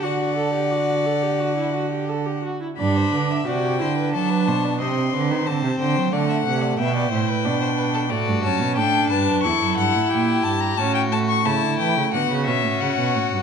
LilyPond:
<<
  \new Staff \with { instrumentName = "Violin" } { \time 4/4 \key g \major \tempo 4 = 89 fis''2.~ fis''8 r8 | b''4 g''4 a''4 c'''4 | a''8 g''8 fis''4 g''2 | d''8 a''8 g''8 a''8 cis'''8 fis''8 g''8 a''16 ais''16 |
a''16 g''16 a''16 cis'''16 a''8 g''8 fis''8 e''8 fis''4 | }
  \new Staff \with { instrumentName = "Violin" } { \time 4/4 \key g \major d''2.~ d''8 r8 | d''16 c''16 b'16 e''16 d''8 c''16 b'16 a'16 b'16 c''16 d''16 dis''8 b'8 | c''4 d''16 e''16 fis''16 d''16 e''16 d''16 c''16 b'16 d''16 c''16 b'16 a'16 | fis'4 a'8 b'8 a'4 g'4 |
fis'4 e'4 fis'2 | }
  \new Staff \with { instrumentName = "Viola" } { \time 4/4 \key g \major fis'8 a'16 g'16 fis'8 a'16 g'16 fis'16 e'16 fis'16 g'16 a'16 g'16 fis'16 e'16 | d'4 fis'8 e'8 d'4 c'4 | c'4 a4 b8 e'8 d'4 | a8 cis'8 d'4 e'2 |
cis'8 a4. b8 cis'4. | }
  \new Staff \with { instrumentName = "Cello" } { \clef bass \time 4/4 \key g \major d2.~ d8 r8 | g,8 d8 c8 d8 fis8 b,8 c8 d16 dis16 | d16 c16 d16 fis16 d8 c8 b,8 a,8 b,4 | a,16 g,16 fis,16 b,16 a,8 g,16 fis,16 e,16 fis,16 g,16 a,16 ais,8 g,8 |
a,4 cis16 d16 e16 cis16 d16 cis16 b,16 a,16 cis16 b,16 a,16 g,16 | }
>>